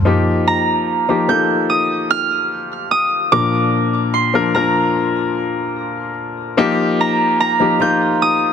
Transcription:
0.05 1.03 F3 medium
0.05 1.03 A#3 medium
0.05 1.04 D#4 medium
0.05 1.04 G4 medium
0.48 1.87 A#5 loud
1.08 1.27 F3 medium
1.08 1.28 A#3 medium
1.08 1.28 D#4 medium
1.08 1.29 G4 medium
1.28 2.84 F3 medium
1.28 2.84 A#3 medium
1.28 2.84 D#4 medium
1.28 2.84 A4 medium
1.28 2.34 G6 medium
1.70 2.87 D#6 medium
2.11 3.20 F6 loud
2.91 3.38 D#6 loud
3.32 4.51 A#2 medium
3.32 4.29 F3 medium
3.32 4.29 A#3 medium
3.32 4.30 D4 medium
3.32 4.30 A#4 medium
3.32 4.54 D6 loud
4.14 5.44 C6 loud
4.34 4.53 F3 medium
4.34 4.53 A#3 medium
4.34 4.54 D4 medium
4.34 4.54 A#4 medium
4.55 6.09 F3 medium
4.55 6.09 A#3 medium
4.55 6.09 D4 medium
4.55 6.10 A#4 medium
4.55 6.13 A#5 medium
6.57 7.54 F3 loud
6.57 7.54 A#3 loud
6.57 7.55 D#4 medium
6.57 7.55 G4 loud
7.01 7.40 A#5 loud
7.40 8.53 A#5 loud
7.60 7.78 F3 medium
7.60 7.79 A#3 medium
7.60 7.79 D#4 medium
7.60 7.80 G4 medium
7.80 8.53 F3 medium
7.80 8.53 A#3 medium
7.80 8.53 D#4 medium
7.80 8.53 F4 medium
7.80 8.53 G6 loud
8.22 8.53 D#6 loud

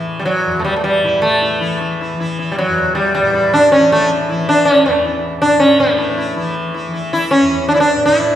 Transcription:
0.00 0.46 E2 medium
0.00 1.03 A2 medium
0.00 1.59 E3 medium
0.19 0.25 G3 medium
0.25 0.61 F#3 medium
0.46 2.68 E2 medium
0.59 0.64 A3 medium
0.65 0.76 G3 medium
0.76 0.83 A3 medium
0.84 1.21 G3 medium
1.03 3.21 A2 medium
1.03 1.22 E4 soft
1.22 1.76 A3 medium
1.42 1.60 E4 soft
1.59 2.13 E3 medium
1.59 1.79 E4 soft
1.81 1.98 E4 soft
2.01 2.18 E4 soft
2.13 3.78 E3 medium
2.20 2.37 E4 soft
2.39 2.56 E4 soft
2.52 2.57 G3 medium
2.58 2.95 F#3 medium
2.68 4.86 E2 medium
2.95 3.13 G3 medium
3.15 3.54 G3 medium
3.22 5.41 A2 medium
3.34 3.51 E4 soft
3.54 3.71 D4 loud
3.72 3.91 C#4 medium
3.78 4.31 E3 medium
3.92 4.09 A3 medium
4.29 6.35 E3 medium
4.29 4.46 E4 soft
4.49 4.68 D4 medium
4.65 4.85 C#4 medium
4.86 7.41 E2 medium
4.86 5.03 A3 medium
5.05 5.22 E4 soft
5.41 5.80 A2 medium
5.41 5.61 D4 medium
5.60 5.78 C#4 medium
5.80 7.96 A2 medium
5.80 6.33 A3 medium
5.98 6.16 E4 soft
6.17 6.35 E4 soft
6.35 6.88 E3 medium
6.35 6.54 E4 soft
6.74 6.92 E4 soft
6.88 8.36 E3 medium
6.93 7.11 E4 soft
7.13 7.32 E4 medium
7.31 7.68 C#4 medium
7.42 8.36 E2 medium
7.68 7.74 D4 medium
7.74 7.80 E4 medium
7.80 8.05 D4 medium
7.96 8.36 A2 medium
8.06 8.36 E4 medium

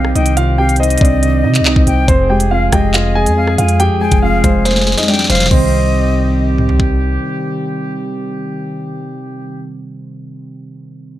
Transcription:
0.00 0.14 B1 loud
0.00 0.16 C3 medium
0.00 0.58 D#3 medium
0.00 2.05 D#3 medium
0.00 2.05 G3 medium
0.00 0.58 C4 medium
0.00 2.04 C4 medium
0.00 0.13 G4 medium
0.00 2.05 G4 medium
0.00 0.15 C5 medium
0.00 0.14 F5 medium
0.00 0.13 G5 medium
0.05 cross-stick medium
0.15 0.98 C2 loud
0.15 0.35 C3 medium
0.15 0.36 D#4 medium
0.15 0.35 D#5 medium
0.15 0.36 G5 medium
0.15 closed hi-hat medium
0.26 closed hi-hat medium
0.37 1.23 C3 medium
0.37 0.57 F4 medium
0.37 0.57 F5 loud
0.37 closed hi-hat medium
0.58 1.00 C4 medium
0.58 0.79 G4 medium
0.58 0.79 F5 medium
0.58 0.78 G5 medium
0.69 closed hi-hat soft
0.76 1.87 C5 medium
0.76 1.83 D#5 loud
0.76 1.00 D#5 medium
0.76 closed hi-hat medium
0.81 1.00 D#4 medium
0.81 closed hi-hat medium
0.90 closed hi-hat medium
0.98 1.45 C2 loud
0.98 1.43 C4 loud
0.98 1.41 D5 medium
0.98 kick medium
0.98 closed hi-hat medium
1.02 1.42 D4 medium
1.02 closed hi-hat medium
1.23 1.85 C3 medium
1.23 closed hi-hat medium
1.44 1.62 C3 loud
1.44 1.64 C4 medium
1.44 1.64 D#4 medium
1.44 1.64 D#5 medium
1.55 clap medium
1.55 closed hi-hat medium
1.60 1.75 C2 loud
1.65 2.08 C4 medium
1.65 2.06 D#4 medium
1.65 2.06 D#5 medium
1.65 clap loud
1.76 1.86 C2 loud
1.76 kick medium
1.87 2.07 C2 loud
1.87 2.08 C3 medium
1.87 2.07 G5 medium
1.87 closed hi-hat medium
2.08 2.70 F1 loud
2.08 2.93 F2 loud
2.08 5.34 F3 medium
2.08 5.34 G#3 medium
2.08 5.34 C4 medium
2.08 2.29 C4 medium
2.08 5.34 G#4 medium
2.08 2.28 C5 loud
2.08 kick loud
2.08 closed hi-hat medium
2.30 2.71 G#3 medium
2.30 2.50 G4 medium
2.30 2.50 G5 medium
2.40 closed hi-hat medium
2.51 3.58 C4 medium
2.51 2.71 F4 medium
2.51 2.71 F5 medium
2.72 3.28 F1 loud
2.72 3.14 G#3 loud
2.72 2.93 G4 medium
2.72 3.33 D#5 medium
2.72 2.93 G5 medium
2.72 kick medium
2.72 cross-stick loud
2.72 closed hi-hat medium
2.94 3.56 F2 medium
2.94 3.14 F4 medium
2.94 3.14 F5 medium
2.94 clap loud
2.94 closed hi-hat medium
3.15 3.35 G#3 medium
3.15 3.56 G#4 medium
3.15 3.56 G#5 loud
3.26 3.57 F2 loud
3.26 closed hi-hat medium
3.37 4.00 G#3 medium
3.37 3.57 F5 medium
3.47 cross-stick medium
3.57 3.79 F2 medium
3.57 3.89 F2 loud
3.57 3.79 F4 medium
3.57 3.78 F5 medium
3.57 3.79 G#5 medium
3.57 closed hi-hat medium
3.68 closed hi-hat medium
3.80 4.64 F2 medium
3.80 4.00 G4 medium
3.80 4.00 G5 loud
3.80 closed hi-hat medium
4.01 4.42 G#3 medium
4.01 4.22 G#4 medium
4.01 4.21 G5 medium
4.01 4.21 G#5 medium
4.11 4.43 F1 loud
4.11 kick loud
4.11 closed hi-hat medium
4.22 5.30 C4 medium
4.22 4.43 F4 medium
4.22 4.42 F5 medium
4.22 4.63 F5 loud
4.44 4.95 F1 loud
4.44 4.86 G#3 loud
4.44 4.64 C4 medium
4.44 4.64 C5 medium
4.44 kick medium
4.44 closed hi-hat medium
4.65 5.28 F2 medium
4.65 4.96 C4 medium
4.65 4.96 C5 medium
4.65 snare medium
4.65 closed hi-hat medium
4.71 snare medium
4.76 snare medium
4.81 snare medium
4.87 5.07 G#3 medium
4.87 snare medium
4.92 snare medium
4.98 5.08 D#4 medium
4.98 5.08 D#5 medium
4.98 snare medium
4.98 closed hi-hat medium
5.03 snare medium
5.08 5.51 G#3 loud
5.08 5.29 D4 medium
5.08 5.28 D5 medium
5.08 5.29 G5 medium
5.08 snare medium
5.14 snare medium
5.19 snare medium
5.24 snare medium
5.30 5.50 F1 loud
5.30 5.51 F2 medium
5.30 5.50 C4 medium
5.30 5.50 C5 medium
5.30 5.50 F5 medium
5.30 snare loud
5.30 closed hi-hat medium
5.35 snare loud
5.40 snare loud
5.45 9.72 C3 medium
5.45 snare loud
5.49 7.19 C2 loud
5.49 9.76 D#3 medium
5.49 9.70 D#3 medium
5.49 9.70 G3 medium
5.49 9.80 G3 medium
5.49 6.76 C4 medium
5.49 9.70 C4 medium
5.49 9.70 G4 medium
5.49 6.76 D#5 loud
5.49 kick loud
5.49 crash medium
5.57 9.84 C4 loud
6.58 mid tom medium
6.69 floor tom medium
6.80 kick medium

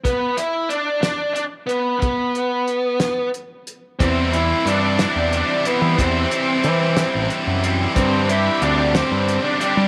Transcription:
0.04 0.39 B3 medium
0.04 kick medium
0.04 closed hi-hat medium
0.37 0.68 E4 medium
0.37 closed hi-hat medium
0.69 1.00 D4 medium
0.69 closed hi-hat soft
1.01 1.32 D4 medium
1.01 snare medium
1.01 closed hi-hat medium
1.34 1.43 D4 medium
1.34 closed hi-hat medium
1.67 1.98 B3 medium
1.67 closed hi-hat medium
2.00 3.29 B3 medium
2.00 kick medium
2.00 closed hi-hat medium
2.35 closed hi-hat soft
2.68 closed hi-hat soft
3.00 snare medium
3.00 closed hi-hat medium
3.34 closed hi-hat medium
3.67 closed hi-hat soft
3.99 4.52 E2 medium
3.99 4.33 E3 medium
3.99 4.33 G3 medium
3.99 4.34 C4 medium
3.99 4.34 E4 medium
3.99 7.92 G4 medium
3.99 7.92 E5 medium
3.99 9.88 C6 medium
3.99 5.96 D6 medium
3.99 kick loud
3.99 closed hi-hat medium
4.33 4.65 E3 medium
4.33 4.65 G3 medium
4.33 4.66 C4 medium
4.33 4.67 E4 medium
4.33 4.66 E4 medium
4.33 closed hi-hat soft
4.65 5.05 G2 medium
4.65 4.98 E3 medium
4.65 4.99 G3 medium
4.65 5.00 C4 medium
4.65 4.99 D4 medium
4.65 4.99 E4 medium
4.65 closed hi-hat medium
4.99 5.64 E3 medium
4.99 5.66 G3 medium
4.99 5.66 C4 medium
4.99 5.32 D4 medium
4.99 5.66 E4 medium
4.99 snare loud
4.99 closed hi-hat medium
5.16 5.42 E2 medium
5.33 5.64 D4 medium
5.33 closed hi-hat medium
5.65 5.97 E3 medium
5.65 5.99 G3 medium
5.65 5.99 B3 medium
5.65 5.99 C4 medium
5.65 5.99 E4 medium
5.65 closed hi-hat medium
5.82 5.95 E3 medium
5.98 6.25 E2 medium
5.98 6.30 E3 medium
5.98 6.32 G3 medium
5.98 6.32 C4 medium
5.98 7.27 C4 medium
5.98 6.32 E4 loud
5.98 7.95 E6 medium
5.98 kick loud
5.98 closed hi-hat medium
6.31 6.63 E3 medium
6.31 6.64 G3 medium
6.31 6.65 C4 medium
6.31 6.64 E4 medium
6.31 closed hi-hat medium
6.64 6.96 E3 medium
6.64 7.03 E3 medium
6.64 6.96 G3 medium
6.64 6.97 C4 medium
6.64 6.96 E4 medium
6.64 closed hi-hat soft
6.97 7.62 E3 medium
6.97 7.63 G3 medium
6.97 7.63 C4 medium
6.97 7.63 E4 loud
6.97 snare loud
6.97 closed hi-hat medium
7.15 7.27 A1 medium
7.30 closed hi-hat medium
7.47 7.86 F#2 medium
7.63 7.94 E3 medium
7.63 7.95 G3 medium
7.63 7.96 C4 medium
7.63 7.95 E4 medium
7.63 closed hi-hat medium
7.94 8.28 G2 medium
7.94 8.48 G2 medium
7.94 8.28 D3 medium
7.94 8.29 G3 medium
7.94 8.29 C4 medium
7.94 8.30 C4 medium
7.94 8.29 D4 medium
7.94 9.88 G4 medium
7.94 8.30 G4 medium
7.94 9.88 D5 medium
7.94 9.88 D6 medium
7.94 kick loud
7.94 closed hi-hat medium
8.29 8.61 G2 medium
8.29 8.60 D3 medium
8.29 8.62 G3 medium
8.29 8.62 C4 medium
8.29 8.63 D4 medium
8.29 8.63 E4 medium
8.29 8.63 G4 medium
8.29 closed hi-hat medium
8.61 9.01 D2 medium
8.61 8.93 G2 medium
8.61 8.94 D3 medium
8.61 8.95 G3 medium
8.61 8.96 C4 medium
8.61 8.94 D4 medium
8.61 8.95 D4 medium
8.61 8.96 G4 medium
8.61 closed hi-hat soft
8.95 9.59 G2 medium
8.95 9.59 D3 medium
8.95 9.61 G3 medium
8.95 9.44 C4 medium
8.95 9.60 C4 medium
8.95 9.60 D4 medium
8.95 9.62 G4 medium
8.95 snare loud
8.95 closed hi-hat medium
9.12 9.37 G2 medium
9.28 closed hi-hat medium
9.44 9.60 D4 medium
9.60 9.88 G2 medium
9.60 9.88 D3 medium
9.60 9.88 G3 medium
9.60 9.88 C4 medium
9.60 9.88 D4 medium
9.60 9.88 G4 medium
9.60 closed hi-hat medium
9.77 9.88 G3 medium

